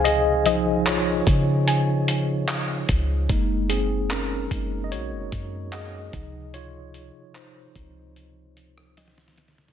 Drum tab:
HH |x---x---x---x---x---x---x---x---|x---x---x---x---x---x---x---x---|x---x---x---x---x---x---x---x---|
CP |--------x---------------x-------|--------x---------------x-------|--------x-----------------------|
SD |--------------------------------|--------------------------------|----------------------r-oooooooo|
BD |------------o---------------o---|o-----------o-------o-------o---|------------o-------------------|